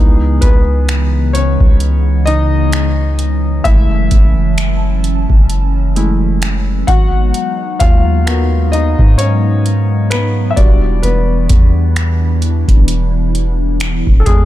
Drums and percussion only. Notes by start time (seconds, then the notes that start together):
0.42 kick, closed hi-hat
0.89 finger snap, closed hi-hat
1.35 closed hi-hat
1.60 kick
1.80 closed hi-hat
2.27 closed hi-hat
2.72 finger snap, closed hi-hat
3.19 closed hi-hat
3.65 kick, closed hi-hat
4.11 kick, closed hi-hat
4.58 finger snap, closed hi-hat
5.04 closed hi-hat
5.30 kick
5.50 closed hi-hat
5.96 closed hi-hat
6.42 finger snap, closed hi-hat
6.88 kick, closed hi-hat
7.34 closed hi-hat
7.80 kick, closed hi-hat
8.27 finger snap, closed hi-hat
8.73 closed hi-hat
8.99 kick
9.19 closed hi-hat
9.66 closed hi-hat
10.11 finger snap, closed hi-hat
10.57 kick, closed hi-hat
11.03 closed hi-hat
11.49 kick, closed hi-hat
11.96 finger snap, closed hi-hat
12.42 closed hi-hat
12.68 kick, closed hi-hat
12.88 closed hi-hat
13.35 closed hi-hat
13.80 finger snap, closed hi-hat
14.07 kick
14.26 kick, closed hi-hat